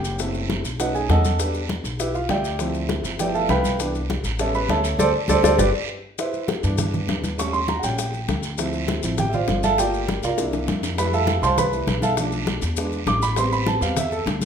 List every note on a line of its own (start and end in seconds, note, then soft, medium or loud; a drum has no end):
0.00 0.59 F#1 medium
0.00 0.18 G4 medium
0.00 0.18 G5 medium
0.04 short guiro medium
0.04 maracas medium
0.19 0.62 A3 medium
0.19 0.62 C4 soft
0.19 0.63 E4 medium
0.19 high bongo medium
0.19 high conga soft
0.19 long guiro medium
0.19 maracas medium
0.34 high bongo soft
0.34 high conga soft
0.34 maracas soft
0.49 high bongo medium
0.49 high conga medium
0.49 short guiro medium
0.49 maracas soft
0.64 1.06 B1 medium
0.64 high conga soft
0.64 short guiro medium
0.64 maracas medium
0.79 1.22 A3 soft
0.79 1.22 C#4 soft
0.79 1.23 D#4 medium
0.79 0.95 F#4 medium
0.79 0.95 B4 medium
0.79 0.95 D#5 medium
0.79 0.94 F#5 medium
0.79 high bongo medium
0.79 high conga soft
0.79 long guiro medium
0.79 maracas medium
0.95 1.10 G#4 medium
0.95 1.09 G#5 medium
0.95 high bongo soft
0.95 high conga soft
0.95 maracas soft
1.09 1.79 E2 medium
1.09 1.52 A4 medium
1.09 1.38 D#5 medium
1.09 1.38 F#5 medium
1.09 1.52 A5 medium
1.09 high bongo medium
1.09 low bongo medium
1.09 high conga medium
1.09 short guiro medium
1.09 maracas soft
1.24 high bongo soft
1.24 high conga medium
1.24 short guiro medium
1.24 maracas medium
1.39 1.59 G3 medium
1.39 1.59 B3 soft
1.39 1.60 D4 medium
1.39 high bongo medium
1.39 high conga soft
1.39 long guiro medium
1.39 maracas medium
1.54 high bongo soft
1.54 high conga soft
1.54 maracas soft
1.69 high bongo medium
1.69 high conga medium
1.69 short guiro medium
1.69 maracas soft
1.84 2.26 B1 medium
1.84 high bongo soft
1.84 high conga soft
1.84 short guiro medium
1.84 maracas medium
2.00 2.15 E4 medium
2.00 2.15 G4 medium
2.00 2.15 B4 medium
2.00 2.14 E5 medium
2.00 high bongo medium
2.00 high conga soft
2.00 long guiro medium
2.00 maracas medium
2.15 2.29 F4 medium
2.15 2.29 F5 medium
2.15 high bongo soft
2.15 high conga soft
2.15 maracas soft
2.29 2.99 D2 medium
2.29 2.72 G4 medium
2.29 2.72 D5 medium
2.29 2.72 E5 medium
2.29 2.72 G5 medium
2.29 high bongo medium
2.29 low bongo medium
2.29 high conga medium
2.29 short guiro medium
2.29 maracas soft
2.44 high conga soft
2.44 short guiro medium
2.44 maracas medium
2.59 3.16 F3 medium
2.59 3.17 C4 soft
2.59 3.17 E4 medium
2.59 high bongo medium
2.59 high conga soft
2.59 long guiro medium
2.59 maracas medium
2.74 high bongo soft
2.74 high conga soft
2.74 maracas soft
2.89 high bongo medium
2.89 high conga medium
2.89 short guiro medium
2.89 maracas soft
3.04 3.46 G1 medium
3.04 high conga soft
3.04 short guiro medium
3.04 maracas medium
3.19 3.76 F3 medium
3.19 3.76 A3 soft
3.19 3.77 B3 soft
3.19 3.77 E4 medium
3.19 3.34 G4 medium
3.19 3.35 D5 medium
3.19 3.34 E5 medium
3.19 3.34 G5 medium
3.19 high bongo medium
3.19 high conga soft
3.19 long guiro medium
3.19 maracas medium
3.34 3.49 A4 medium
3.34 3.49 E5 medium
3.34 3.49 F5 medium
3.34 3.49 A5 medium
3.34 high bongo soft
3.34 high conga soft
3.34 maracas soft
3.49 4.18 C2 loud
3.49 3.92 B4 medium
3.49 3.78 F5 medium
3.49 3.92 G5 medium
3.49 3.91 B5 medium
3.49 high bongo medium
3.49 low bongo medium
3.49 high conga medium
3.49 short guiro medium
3.49 maracas soft
3.64 high bongo soft
3.64 high conga medium
3.64 short guiro medium
3.64 maracas medium
3.79 3.99 E3 medium
3.79 3.99 B3 soft
3.79 4.00 D4 medium
3.79 high bongo medium
3.79 high conga soft
3.79 maracas medium
3.94 high bongo soft
3.94 high conga soft
3.94 maracas soft
4.10 high bongo medium
4.10 high conga medium
4.10 short guiro medium
4.10 maracas soft
4.24 4.66 A1 medium
4.24 high bongo soft
4.24 high conga soft
4.24 short guiro medium
4.24 maracas medium
4.39 4.82 G3 medium
4.39 4.82 B3 soft
4.39 4.83 C#4 medium
4.39 4.54 A4 medium
4.39 4.55 C#5 medium
4.39 4.55 E5 medium
4.39 4.54 A5 medium
4.39 high bongo medium
4.39 high conga soft
4.39 long guiro medium
4.39 maracas medium
4.54 4.69 B4 medium
4.54 4.69 B5 medium
4.54 high bongo soft
4.54 high conga soft
4.54 maracas soft
4.69 4.97 D2 medium
4.69 4.97 A4 medium
4.69 4.97 C#5 medium
4.69 4.97 E5 medium
4.69 4.97 A5 medium
4.69 high bongo medium
4.69 low bongo medium
4.69 high conga medium
4.69 short guiro medium
4.69 maracas soft
4.84 high conga soft
4.84 short guiro medium
4.84 maracas medium
4.98 5.10 D2 loud
4.98 5.09 A4 medium
4.98 5.09 C5 loud
4.98 5.09 D5 medium
4.98 high bongo medium
4.98 high conga loud
4.98 long guiro medium
4.98 maracas loud
5.28 5.40 D2 medium
5.28 5.39 A4 loud
5.28 5.39 C5 medium
5.28 5.39 D5 medium
5.28 high bongo medium
5.28 high conga medium
5.28 long guiro medium
5.28 maracas loud
5.43 5.55 D2 loud
5.43 5.54 A4 medium
5.43 5.54 C5 loud
5.43 5.54 D5 loud
5.43 high bongo loud
5.43 high conga loud
5.43 long guiro loud
5.43 maracas medium
5.58 5.70 G1 loud
5.58 5.68 G4 medium
5.58 5.68 B4 medium
5.58 5.68 D5 medium
5.58 high bongo medium
5.58 high conga medium
5.58 long guiro medium
5.58 maracas loud
6.18 6.47 E4 medium
6.18 6.47 B4 medium
6.18 6.47 C5 medium
6.18 6.47 E5 medium
6.18 high bongo medium
6.18 high conga soft
6.18 long guiro medium
6.18 maracas medium
6.33 high conga soft
6.33 maracas soft
6.48 high bongo medium
6.48 high conga medium
6.48 short guiro medium
6.48 maracas soft
6.63 7.05 G2 medium
6.63 7.34 E3 medium
6.63 7.35 B3 medium
6.63 7.35 D4 medium
6.63 high bongo soft
6.63 high conga soft
6.63 short guiro medium
6.63 maracas medium
6.78 high bongo medium
6.78 high conga soft
6.78 low conga medium
6.78 long guiro medium
6.78 maracas medium
6.94 high bongo soft
6.94 high conga soft
6.94 low conga medium
6.94 maracas soft
7.08 7.78 D#2 medium
7.08 high bongo medium
7.08 low bongo medium
7.08 high conga medium
7.08 short guiro medium
7.08 maracas soft
7.24 high bongo soft
7.24 high conga medium
7.24 short guiro medium
7.24 maracas medium
7.38 7.58 G3 medium
7.38 7.59 A3 soft
7.38 7.59 C#4 medium
7.38 7.53 C#6 medium
7.38 high bongo medium
7.38 high conga soft
7.38 long guiro medium
7.38 maracas medium
7.53 7.68 C6 medium
7.53 high conga soft
7.53 maracas soft
7.68 7.83 A#5 medium
7.68 high bongo medium
7.68 high conga medium
7.68 short guiro medium
7.68 maracas soft
7.79 7.97 G3 soft
7.79 7.82 F#5 medium
7.79 high bongo soft
7.79 maracas medium
7.83 8.25 A#1 medium
7.83 7.97 A3 soft
7.83 7.97 C#4 medium
7.83 8.55 G5 medium
7.83 high conga soft
7.83 short guiro medium
7.98 high bongo medium
7.98 high conga soft
7.98 long guiro medium
7.98 maracas medium
8.14 high bongo soft
8.14 high conga soft
8.14 maracas soft
8.28 8.98 D2 medium
8.28 high bongo medium
8.28 low bongo medium
8.28 high conga medium
8.28 short guiro medium
8.28 maracas soft
8.43 high bongo soft
8.43 high conga soft
8.43 short guiro medium
8.43 maracas medium
8.58 9.01 F3 medium
8.58 9.01 C4 soft
8.58 9.01 E4 medium
8.58 high bongo medium
8.58 high conga soft
8.58 long guiro medium
8.58 maracas medium
8.73 high conga soft
8.73 maracas soft
8.88 high bongo medium
8.88 high conga loud
8.88 short guiro medium
8.88 maracas soft
9.03 9.45 A1 medium
9.03 9.17 F3 soft
9.03 9.17 C4 soft
9.03 9.17 E4 medium
9.03 high bongo soft
9.03 high conga soft
9.03 short guiro medium
9.03 maracas medium
9.18 9.34 G4 medium
9.18 9.33 G5 medium
9.18 high bongo medium
9.18 high conga soft
9.18 low conga medium
9.18 long guiro medium
9.18 maracas medium
9.29 9.31 E5 medium
9.29 high bongo soft
9.29 maracas soft
9.34 9.62 F4 medium
9.34 9.61 C5 medium
9.34 9.62 D5 medium
9.34 9.61 F5 medium
9.34 high conga soft
9.34 low conga medium
9.48 10.18 G1 medium
9.48 high bongo medium
9.48 low bongo medium
9.48 high conga medium
9.48 short guiro medium
9.48 maracas soft
9.63 9.78 A4 medium
9.63 9.78 E5 medium
9.63 9.78 F5 medium
9.63 9.78 A5 loud
9.63 high bongo soft
9.63 high conga medium
9.63 short guiro medium
9.63 maracas medium
9.78 9.98 A3 medium
9.78 9.98 A#3 soft
9.78 9.99 F4 medium
9.78 10.21 G4 medium
9.78 10.21 A#4 medium
9.78 10.21 D5 medium
9.78 10.20 G5 medium
9.78 high bongo medium
9.78 high conga soft
9.78 long guiro medium
9.78 maracas medium
9.94 high conga soft
9.94 maracas soft
10.08 high bongo medium
10.08 high conga loud
10.08 short guiro medium
10.08 maracas soft
10.23 10.65 C2 medium
10.23 10.38 F4 medium
10.23 10.38 A#4 medium
10.23 10.38 D5 medium
10.23 10.38 F5 medium
10.23 high bongo soft
10.23 high conga soft
10.23 short guiro medium
10.23 maracas medium
10.38 10.95 A#3 medium
10.38 10.95 D4 soft
10.38 10.95 E4 medium
10.38 high bongo medium
10.38 high conga soft
10.38 long guiro medium
10.38 maracas medium
10.53 low bongo medium
10.53 high conga soft
10.53 maracas soft
10.67 11.37 F2 medium
10.67 low bongo medium
10.67 high conga medium
10.67 short guiro medium
10.67 maracas soft
10.83 low bongo medium
10.83 high conga soft
10.83 short guiro medium
10.83 maracas medium
10.97 11.71 G3 medium
10.97 11.71 A3 soft
10.97 11.72 E4 medium
10.97 11.13 B4 medium
10.97 11.13 B5 medium
10.97 high bongo medium
10.97 high conga soft
10.97 long guiro medium
10.97 maracas medium
11.13 11.41 A4 medium
11.13 11.41 E5 medium
11.13 11.41 F5 medium
11.13 11.41 A5 medium
11.13 high conga soft
11.13 maracas soft
11.27 high bongo medium
11.27 high conga medium
11.27 short guiro medium
11.27 maracas soft
11.42 11.84 C2 medium
11.42 11.58 C5 medium
11.42 11.58 F5 medium
11.42 11.58 A5 medium
11.42 11.57 C6 loud
11.42 high bongo soft
11.42 high conga soft
11.42 short guiro medium
11.42 maracas medium
11.58 12.00 B4 medium
11.58 12.00 B5 medium
11.58 high bongo medium
11.58 high conga soft
11.58 low conga medium
11.58 maracas medium
11.72 11.86 G3 soft
11.72 11.86 A3 soft
11.72 11.86 E4 soft
11.72 high bongo soft
11.72 high conga soft
11.72 maracas soft
11.87 12.57 B1 medium
11.87 high bongo medium
11.87 low bongo medium
11.87 high conga medium
11.87 short guiro medium
11.87 maracas soft
12.02 12.12 A4 medium
12.02 12.12 E5 medium
12.02 12.12 F5 medium
12.02 12.12 A5 medium
12.02 high bongo soft
12.02 high conga medium
12.02 short guiro medium
12.02 maracas medium
12.17 12.60 F3 medium
12.17 12.60 A3 soft
12.17 12.60 D4 medium
12.17 high bongo medium
12.17 high conga soft
12.17 long guiro medium
12.17 maracas medium
12.32 high conga soft
12.32 maracas soft
12.47 high bongo medium
12.47 high conga medium
12.47 short guiro medium
12.47 maracas soft
12.62 13.04 E2 medium
12.62 high bongo soft
12.62 high conga soft
12.62 short guiro medium
12.62 maracas medium
12.77 12.97 G#3 medium
12.77 12.97 B3 soft
12.77 12.98 D4 medium
12.77 high bongo medium
12.77 high conga soft
12.77 long guiro medium
12.77 maracas medium
12.92 high bongo soft
12.92 high conga soft
12.92 maracas soft
13.06 13.76 A1 loud
13.06 13.22 D6 medium
13.06 high bongo medium
13.06 low bongo medium
13.06 high conga medium
13.06 short guiro medium
13.06 maracas soft
13.22 13.37 B5 loud
13.22 high bongo soft
13.22 short guiro medium
13.22 maracas medium
13.36 13.81 G3 medium
13.36 13.81 B3 medium
13.36 13.81 C4 medium
13.36 13.52 C6 medium
13.36 high bongo medium
13.36 high conga soft
13.36 long guiro medium
13.36 maracas medium
13.52 13.67 B5 medium
13.52 high conga soft
13.52 maracas soft
13.66 13.81 A5 medium
13.66 high bongo medium
13.66 high conga medium
13.66 short guiro medium
13.66 maracas soft
13.81 14.23 E2 loud
13.81 13.95 G3 soft
13.81 13.96 B3 soft
13.81 13.96 C4 medium
13.81 13.97 F5 medium
13.81 high bongo soft
13.81 high conga soft
13.81 short guiro medium
13.81 maracas medium
13.97 14.12 E5 medium
13.97 high bongo medium
13.97 high conga soft
13.97 low conga medium
13.97 maracas medium
14.12 14.21 A4 medium
14.12 high bongo soft
14.12 high conga soft
14.12 maracas soft
14.26 14.45 D2 loud
14.26 high bongo medium
14.26 low bongo medium
14.26 high conga medium
14.26 short guiro medium
14.26 maracas soft
14.42 high conga medium
14.42 maracas medium